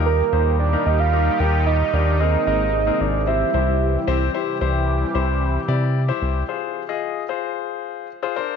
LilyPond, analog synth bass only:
\new Staff \with { instrumentName = "Analog synth bass" } { \clef bass \time 4/4 \key f \dorian \tempo 4 = 112 ees,8 ees,4 ees,4 ees,4 ees,8~ | ees,8 aes,,4 aes,,4 c,4 c,8 | r8 c,4 c,4 c4 c,8 | r1 | }